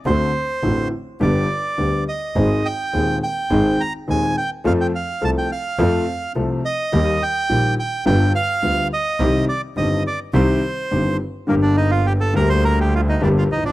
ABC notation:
X:1
M:4/4
L:1/16
Q:1/4=105
K:Cm
V:1 name="Bandoneon"
c6 z2 d6 e2- | e2 g4 g4 b2 a2 g2 | f g f2 =a g f6 z2 e2- | e2 g4 g2 g2 f4 e2- |
e2 d2 e2 d2 c6 z2 | [K:Gm] B, D E F G A B c B G F E D F E D |]
V:2 name="Grand piano" clef=bass
[D,,D,=A,C^F]2 z2 [=A,,,=A,,D,A,CF]2 z2 [G,,,G,,D,G,=B,G]2 z2 [D,,D,G,B,G]2 z2 | [A,,,A,,E,A,CA]2 z2 [E,,,E,,E,A,CA]2 z2 [A,,,A,,E,A,CA]2 z2 [E,,,E,,E,A,CA]2 z2 | [F,,F,=A,C=A]2 z2 [C,,C,F,A,CA]2 z2 [F,,F,A,CA]2 z2 [C,,C,F,A,CA]2 z2 | [E,,E,G,B,G]2 z2 [B,,,B,,E,G,B,G]2 z2 [G,,,G,,D,G,=B,F]2 z2 [D,,D,G,B,F]2 z2 |
[C,,C,E,G,CG]2 z2 [G,,,G,,E,G,CG]2 z2 [C,,C,E,G,CG]2 z2 [G,,,G,,E,G,CG]2 z2 | [K:Gm] [G,,,G,,D,G,B,G]6 [D,,D,G,B,G]6 [G,,,G,,D,G,B,G]2 z/2 A,,,/2 B,,,/2 z/2 |]
V:3 name="Double bass" clef=bass
D,,2 z2 =A,,,2 z2 G,,,2 z2 D,,2 z2 | A,,,2 z2 E,,2 z2 A,,,2 z2 E,,2 z2 | F,,2 z2 C,,2 z2 F,,2 z2 C,,2 z2 | E,,2 z2 B,,,2 z2 G,,,2 z2 D,,2 z2 |
C,,2 z2 G,,,2 z2 C,,2 z2 G,,,2 z2 | [K:Gm] G,,,6 D,,6 G,,,2 B,,,2 |]